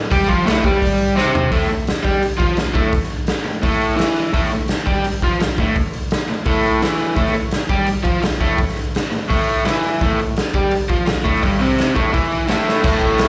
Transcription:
0.11 overdriven electric guitar G3 G4, kick, open hi-hat
0.28 overdriven electric guitar F3 F4, kick
0.46 overdriven electric guitar A2 A3, snare, open hi-hat
0.64 overdriven electric guitar G3 G4, kick
0.82 kick, open hi-hat
1.16 overdriven electric guitar C3 C4, snare
1.35 floor tom
1.51 overdriven electric guitar A2 A3, kick, open hi-hat
1.62 snare
1.69 overdriven electric guitar A2, open hi-hat
1.87 snare, open hi-hat
2.03 overdriven electric guitar G3 G4, kick, open hi-hat
2.21 muted overdriven electric guitar stroke, open hi-hat
2.38 overdriven electric guitar F3 F4, kick, open hi-hat
2.57 overdriven electric guitar A2, snare, open hi-hat
2.73 overdriven electric guitar A2 A3, kick, open hi-hat
2.93 kick, open hi-hat
3.03 snare
3.10 open hi-hat
3.27 snare, open hi-hat
3.45 overdriven electric guitar A2, open hi-hat
3.62 overdriven electric guitar A2 A3, kick, open hi-hat
3.81 open hi-hat
3.97 overdriven electric guitar E3 E4, snare, open hi-hat
4.16 open hi-hat
4.33 overdriven electric guitar A2 A3, kick, open hi-hat
4.44 snare
4.51 overdriven electric guitar A2, open hi-hat
4.68 snare, open hi-hat
4.86 overdriven electric guitar G3 G4, kick, open hi-hat
5.04 muted overdriven electric guitar stroke, open hi-hat
5.22 overdriven electric guitar F3 F4, kick, open hi-hat
5.40 overdriven electric guitar A2, snare, open hi-hat
5.58 overdriven electric guitar A2 A3, kick, open hi-hat
5.76 kick, open hi-hat
5.93 open hi-hat
6.11 snare, open hi-hat
6.28 overdriven electric guitar A2, open hi-hat
6.46 overdriven electric guitar A2 A3, kick, open hi-hat
6.63 open hi-hat
6.82 overdriven electric guitar E3 E4, snare, open hi-hat
7.00 open hi-hat
7.16 overdriven electric guitar A2 A3, kick, open hi-hat
7.26 snare
7.33 overdriven electric guitar A2, open hi-hat
7.51 snare, open hi-hat
7.70 overdriven electric guitar G3 G4, kick, open hi-hat
7.87 muted overdriven electric guitar stroke, open hi-hat
8.03 overdriven electric guitar F3 F4, kick, open hi-hat
8.22 overdriven electric guitar A2, snare, open hi-hat
8.41 overdriven electric guitar A2 A3, kick, open hi-hat
8.58 kick, open hi-hat
8.68 snare
8.76 open hi-hat
8.95 snare, open hi-hat
9.11 overdriven electric guitar A2, open hi-hat
9.29 overdriven electric guitar A2 A3, kick, open hi-hat
9.49 open hi-hat
9.65 overdriven electric guitar E3 E4, snare, open hi-hat
9.84 open hi-hat
10.01 overdriven electric guitar A2 A3, kick, open hi-hat
10.19 overdriven electric guitar A2, open hi-hat
10.36 snare, open hi-hat
10.53 overdriven electric guitar G3 G4, kick, open hi-hat
10.71 muted overdriven electric guitar stroke, open hi-hat
10.89 overdriven electric guitar F3 F4, kick, open hi-hat
11.06 overdriven electric guitar A2, snare, open hi-hat
11.24 overdriven electric guitar A2 A3, kick, open hi-hat
11.36 snare
11.43 overdriven electric guitar G2 G3, kick, open hi-hat
11.59 overdriven electric guitar C3 C4, open hi-hat
11.79 snare, open hi-hat
11.95 overdriven electric guitar A2 A3, kick, open hi-hat
12.13 overdriven electric guitar E3 E4, kick, open hi-hat
12.32 open hi-hat
12.47 overdriven electric guitar A2 A3, snare, open hi-hat
12.68 snare
12.84 overdriven electric guitar A2 A3, kick, crash
13.01 kick, crash
13.18 snare, crash

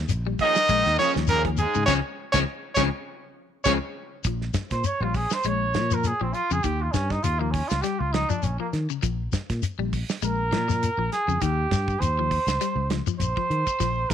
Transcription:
0.09 fingered electric bass A#1, muted clean electric guitar stroke, closed hi-hat, shekere
0.26 clean electric guitar G3, muted clean electric guitar stroke
0.39 clean electric guitar F3 A#3 C#4 G#4, trumpet D#5, kick, open hi-hat, shekere
0.44 baritone saxophone D#3, trumpet D#4
0.55 muted clean electric guitar stroke, snare, closed hi-hat, shekere
0.69 fingered electric bass A#1, clean electric guitar G#3, kick, snare, closed hi-hat, shekere
0.86 fingered electric bass D#2, muted clean electric guitar stroke, snare, closed hi-hat
0.98 baritone saxophone C#3, clean electric guitar F3 A#3 C#4 G#4, trumpet C#5, snare, closed hi-hat, shekere
1.02 trumpet C#4
1.15 fingered electric bass D#2, clean electric guitar F3, muted clean electric guitar stroke, snare, shekere
1.27 clean electric guitar F3 A#3 C#4 G#4, trumpet A#4, closed hi-hat, shekere
1.31 baritone saxophone A#2, trumpet A#3
1.45 clean electric guitar F3, kick, closed hi-hat
1.57 baritone saxophone G#2, trumpet G#3 G#4, muted clean electric guitar stroke, closed hi-hat, shekere
1.74 fingered electric bass G#2, clean electric guitar C#3, muted clean electric guitar stroke, shekere
1.86 fingered electric bass C#2, baritone saxophone C#3, clean electric guitar C#3 F3 G#3 C4 C#4, trumpet C#4 C#5, kick, snare, shekere
2.32 fingered electric bass C#2, baritone saxophone C#3, clean electric guitar C#3 F3 G#3 C4 C#4, trumpet C#4 C#5, kick, snare, shekere
2.75 fingered electric bass C#2, baritone saxophone C#3, clean electric guitar C#3 F3 G#3, trumpet C#4 C#5, kick, snare, shekere
2.79 clean electric guitar C4 C#4
3.64 fingered electric bass C#2, clean electric guitar C#3 F3 G#3 C4 C#4, baritone saxophone C#3, trumpet C#4 C#5, kick, snare, shekere
4.24 fingered electric bass A#1, clean electric guitar F3, kick, closed hi-hat, shekere
4.42 snare
4.54 kick, snare, closed hi-hat, shekere
4.70 fingered electric bass A#2, trumpet C5, kick, snare, closed hi-hat, shekere
4.84 trumpet C#5, closed hi-hat, shekere
5.00 fingered electric bass A#1, clean electric guitar G3, trumpet F4
5.14 trumpet G#4, kick, open hi-hat, shekere
5.30 trumpet C5, snare, shekere
5.43 fingered electric bass A#1, clean electric guitar G#3, closed hi-hat, shekere
5.48 trumpet C#5
5.74 fingered electric bass A#2, clean electric guitar F3, snare, closed hi-hat, shekere
5.91 clean electric guitar F3, trumpet A#4, shekere
6.04 trumpet G#4, closed hi-hat, shekere
6.21 fingered electric bass A#1, clean electric guitar F3, trumpet C4
6.34 trumpet F4, closed hi-hat, shekere
6.51 fingered electric bass F2, clean electric guitar C#3, trumpet G#4, shekere
6.63 fingered electric bass D#2, clean electric guitar D#3, trumpet G4, kick, closed hi-hat, shekere
6.82 trumpet F4
6.92 fingered electric bass G2, trumpet C#4, kick, snare, closed hi-hat, shekere
7.10 trumpet D#4, kick, snare, shekere
7.23 fingered electric bass D#2, trumpet F4, closed hi-hat, shekere
7.39 clean electric guitar F3, trumpet A#3
7.51 trumpet C#4, kick, open hi-hat, shekere
7.68 fingered electric bass C#2, trumpet F4, snare, closed hi-hat, shekere
7.82 clean electric guitar G3, trumpet G4, snare, closed hi-hat, shekere
7.99 fingered electric bass C#2, trumpet F4
8.13 clean electric guitar F3, trumpet D#4, snare, closed hi-hat, shekere
8.29 clean electric guitar F3, trumpet D4, shekere
8.43 fingered electric bass A#1, trumpet C#4, closed hi-hat, shekere
8.60 clean electric guitar F3, trumpet A#3
8.73 fingered electric bass D#3, snare, closed hi-hat, shekere
8.90 clean electric guitar C#3, shekere
9.03 fingered electric bass A#1, clean electric guitar F3, kick, closed hi-hat, shekere
9.32 kick, snare, closed hi-hat, shekere
9.50 fingered electric bass A#2, kick, snare, closed hi-hat, shekere
9.63 closed hi-hat, shekere
9.79 fingered electric bass A#1, clean electric guitar G3
9.93 kick, open hi-hat, shekere
10.09 snare, shekere
10.22 fingered electric bass A#1, clean electric guitar G#3, trumpet A#4, closed hi-hat, shekere
10.52 fingered electric bass A#2, clean electric guitar F3, snare, closed hi-hat, shekere
10.68 clean electric guitar F3, snare, shekere
10.83 closed hi-hat, shekere
10.98 fingered electric bass A#1, clean electric guitar F3
11.12 trumpet G#4, snare, closed hi-hat, shekere
11.28 fingered electric bass F2, clean electric guitar C#3, shekere
11.41 fingered electric bass D#2, clean electric guitar D#3, trumpet G4, kick, snare, closed hi-hat, shekere
11.71 fingered electric bass G2, kick, snare, closed hi-hat, shekere
11.88 kick, shekere
12.00 fingered electric bass D#2, trumpet C5, closed hi-hat, shekere
12.19 clean electric guitar F3
12.31 kick, open hi-hat, shekere
12.47 fingered electric bass C#2, snare, closed hi-hat, shekere
12.61 clean electric guitar G3, snare, closed hi-hat, shekere
12.76 fingered electric bass C#2
12.90 clean electric guitar F3, snare, closed hi-hat, shekere
13.07 clean electric guitar F3, shekere
13.20 fingered electric bass A#1, trumpet C5, closed hi-hat, shekere
13.37 clean electric guitar F3, kick
13.50 fingered electric bass D#3, closed hi-hat, shekere
13.67 kick, shekere
13.80 fingered electric bass A#1, clean electric guitar F3, kick, snare, closed hi-hat, shekere
14.09 trumpet A#4, kick, snare, closed hi-hat

